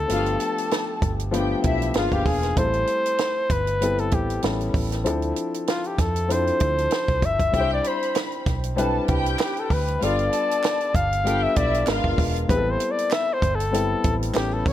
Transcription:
Already playing: grand piano G3 B3 C4 D4 D#4 E4, flugelhorn A4
0.08 fingered electric bass G1, grand piano F3 A3 B3 D4 F#4, string section F4 F5, closed hi-hat
0.17 grand piano G4
0.26 closed hi-hat
0.40 string section A4 A5, closed hi-hat
0.58 closed hi-hat
0.71 snare, closed hi-hat
1.02 fingered electric bass G1, kick, closed hi-hat
1.20 closed hi-hat
1.31 grand piano F3 A3 B3 D4 F4, string section G4 G5, closed hi-hat
1.40 grand piano G4
1.64 fingered electric bass B1, string section E4 E5, kick, closed hi-hat
1.82 closed hi-hat
1.94 fingered electric bass G#1, grand piano F3 A#3 B3 D4 G#4, string section F4 F5, flugelhorn F4, snare, closed hi-hat
2.12 fingered electric bass G1, flugelhorn G4, kick, closed hi-hat
2.26 fingered electric bass E1, flugelhorn G#4, kick, open hi-hat
2.43 snare, closed hi-hat
2.57 fingered electric bass A1, grand piano G3 A3 C4 E4 A4, flugelhorn C5, kick, closed hi-hat
2.73 closed hi-hat
2.87 closed hi-hat
3.06 closed hi-hat
3.18 snare, closed hi-hat
3.50 fingered electric bass G1, flugelhorn B4, kick, closed hi-hat
3.67 closed hi-hat
3.81 grand piano G3 B3 C4 E4 A4, closed hi-hat
3.98 flugelhorn A4, closed hi-hat
4.11 fingered electric bass A1, flugelhorn G4, kick, closed hi-hat
4.30 closed hi-hat
4.42 fingered electric bass A1, grand piano G3 B3 C#4 E4 A4, snare, closed hi-hat
4.61 closed hi-hat
4.74 fingered electric bass A1, kick, open hi-hat
4.92 snare, closed hi-hat
5.04 fingered electric bass D2, grand piano F3 C4 D4 E4 A4, closed hi-hat
5.22 closed hi-hat
5.36 closed hi-hat
5.54 closed hi-hat
5.67 flugelhorn F4, snare, closed hi-hat
5.84 flugelhorn G4, closed hi-hat
5.98 fingered electric bass F2, flugelhorn A4, kick, snare, closed hi-hat
6.16 closed hi-hat
6.28 grand piano F3 C4 D4 E4 A4, flugelhorn C5, closed hi-hat
6.47 closed hi-hat
6.60 fingered electric bass D2, kick, closed hi-hat
6.78 closed hi-hat
6.91 snare, closed hi-hat
7.08 fingered electric bass C2, kick, closed hi-hat
7.22 fingered electric bass G1, flugelhorn E5, kick, closed hi-hat
7.40 kick, closed hi-hat
7.52 fingered electric bass C2, grand piano G3 C4 D4 E4 A4, string section G4 G5, kick, closed hi-hat
7.61 grand piano C5
7.73 flugelhorn D5
7.84 string section C5 B5, flugelhorn C5, closed hi-hat
8.03 closed hi-hat
8.15 snare, clap, closed hi-hat
8.32 closed hi-hat
8.46 fingered electric bass B1, kick, snare, closed hi-hat
8.64 closed hi-hat
8.76 grand piano G3 C4 D4 E4 B4, string section A4 A5, closed hi-hat
9.08 fingered electric bass C2, string section G4 G5, kick, closed hi-hat
9.26 closed hi-hat
9.39 snare, clap, closed hi-hat
9.43 flugelhorn G4
9.57 flugelhorn A4, closed hi-hat
9.70 fingered electric bass D2, flugelhorn B4, kick, open hi-hat
9.88 closed hi-hat
10.01 fingered electric bass G1, grand piano G3 B3 D4 F4 A4, string section F4 F5, flugelhorn D5, closed hi-hat
10.19 closed hi-hat
10.32 string section A4 A5, closed hi-hat
10.51 closed hi-hat
10.64 snare, clap, closed hi-hat
10.81 closed hi-hat
10.95 fingered electric bass G1, flugelhorn F5, kick, closed hi-hat
11.13 closed hi-hat
11.24 grand piano G3 B3 D4 F4 A4, string section G4 G5, closed hi-hat
11.43 flugelhorn E5
11.56 fingered electric bass B1, string section E4 E5, flugelhorn D5, kick, closed hi-hat
11.74 closed hi-hat
11.86 fingered electric bass G#1, grand piano G#3 B3 D4 F4 A#4, string section F4 F5, snare, clap, closed hi-hat
12.04 fingered electric bass G1, kick
12.18 fingered electric bass E1, kick, open hi-hat
12.36 closed hi-hat
12.48 fingered electric bass A1, grand piano G3 B3 C4 E4 G#4, flugelhorn B4, kick, closed hi-hat
12.57 grand piano A4
12.71 flugelhorn C5
12.80 closed hi-hat
12.91 flugelhorn D5
12.99 closed hi-hat
13.11 flugelhorn E5, snare, clap, closed hi-hat
13.33 flugelhorn C5
13.42 fingered electric bass G1, kick, closed hi-hat
13.55 flugelhorn A4
13.60 closed hi-hat
13.71 grand piano G3 B3 C4 E4 A4, closed hi-hat
14.04 fingered electric bass A1, kick, closed hi-hat
14.22 closed hi-hat
14.33 fingered electric bass A1, grand piano G3 B3 C#4 E4 A4, flugelhorn G4, snare, clap, closed hi-hat
14.53 flugelhorn A4
14.66 fingered electric bass D2, flugelhorn C#5, kick, open hi-hat

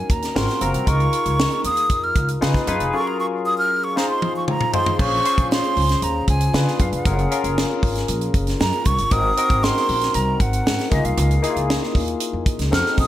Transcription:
Already playing: tine electric piano C#4 D#4 F#4 A#4, flute G#5
0.10 upright bass D#2, flute A#5, kick, closed hi-hat
0.22 snare, closed hi-hat
0.35 upright bass G#1, tine electric piano C4 F4 F#4 A#4, flute C6, snare
0.48 snare, closed hi-hat
0.61 upright bass F#1, tine electric piano C4 F4 F#4 A#4, flute A#5, closed hi-hat
0.74 upright bass C2, closed hi-hat
0.86 upright bass C#2, tine electric piano D#4 F4 G#4 A#4, flute C#6, kick, closed hi-hat
1.00 closed hi-hat
1.13 closed hi-hat
1.26 upright bass C#2, closed hi-hat
1.40 snare
1.51 closed hi-hat
1.64 upright bass D#2, flute D#6, closed hi-hat
1.77 closed hi-hat
1.90 upright bass F2, kick, closed hi-hat
2.04 flute F6
2.15 upright bass C#2, kick, closed hi-hat
2.28 closed hi-hat
2.41 upright bass C#3, tine electric piano D#4 F4 G#4 B4, snare
2.54 kick, snare, closed hi-hat
2.67 upright bass F#2, tine electric piano D#4 F4 G#4 B4, closed hi-hat
2.80 upright bass F1, closed hi-hat
2.93 tine electric piano F#3 C#4 F4 G#4 A4, flute C#6
3.00 tine electric piano A#4
3.07 flute A#5
3.20 flute C#6
3.46 flute D#6
3.58 flute F6
3.84 flute C#6
3.96 tine electric piano D#4 F4 G#4 C5, flute A#5, snare
4.10 flute C6
4.22 high tom
4.36 flute C#6
4.48 flute A#5, mid tom
4.61 mid tom
4.73 tine electric piano D#4 F4 G#4 C5, flute C6, floor tom
4.86 floor tom
4.99 upright bass A#1, tine electric piano C#4 F4 G#4 C5, flute C#6, kick, crash
5.25 tine electric piano C#4 F4 G#4 C5, closed hi-hat
5.38 upright bass A#1, kick, closed hi-hat
5.52 flute C6, snare
5.64 closed hi-hat
5.77 upright bass C#2, open hi-hat
5.89 snare, closed hi-hat
6.02 upright bass D#2, flute A#5, closed hi-hat
6.28 upright bass C#2, flute G#5, kick, closed hi-hat
6.41 closed hi-hat
6.53 upright bass C#3, tine electric piano D4 F4 G#4 B4, snare
6.67 snare
6.79 upright bass F#2, flute F5, kick, closed hi-hat
6.92 upright bass F1, flute F#5, closed hi-hat
7.05 upright bass F#1, tine electric piano C#4 F4 G#4 A#4, kick, closed hi-hat
7.19 closed hi-hat
7.31 tine electric piano C#4 F4 G#4 A#4, closed hi-hat
7.44 upright bass F#1, closed hi-hat
7.58 snare
7.83 upright bass G#1, kick, open hi-hat
7.95 snare, closed hi-hat
8.08 upright bass A#1, closed hi-hat
8.21 closed hi-hat
8.34 upright bass F#1, kick, closed hi-hat
8.47 snare, closed hi-hat
8.60 upright bass F#2, flute A#5, snare
8.73 closed hi-hat
8.85 upright bass C2, flute C#6, kick, closed hi-hat
8.98 upright bass G1, closed hi-hat
9.11 upright bass G#1, tine electric piano C4 D#4 F#4 A#4, flute D#6, kick, closed hi-hat
9.37 tine electric piano C4 D#4 F#4 A#4, closed hi-hat
9.50 upright bass G#1, kick, closed hi-hat
9.63 flute C6, snare
9.77 snare
9.89 upright bass A#1, open hi-hat
10.01 snare, closed hi-hat
10.14 upright bass C2, flute A#5, closed hi-hat
10.40 upright bass G#1, flute F#5, kick, closed hi-hat
10.53 closed hi-hat
10.66 upright bass G#2, snare
10.79 snare, closed hi-hat
10.91 upright bass C#2, tine electric piano A#3 D#4 F4 G#4, flute D#5, kick, closed hi-hat
11.05 upright bass C2, flute F5, closed hi-hat
11.17 upright bass C#2, closed hi-hat
11.31 closed hi-hat
11.42 tine electric piano A#3 D#4 E4 G#4, closed hi-hat
11.49 tine electric piano F4
11.56 upright bass C#2, closed hi-hat
11.70 snare
11.83 snare
11.95 upright bass D#2, kick, open hi-hat
12.08 closed hi-hat
12.20 closed hi-hat
12.33 upright bass F2
12.46 kick, closed hi-hat
12.59 upright bass C#2, snare, closed hi-hat
12.71 upright bass F2, tine electric piano C4 D#4 F#4 A4, flute F6, snare
12.86 snare
12.97 upright bass A#1, flute D#6, kick, open hi-hat

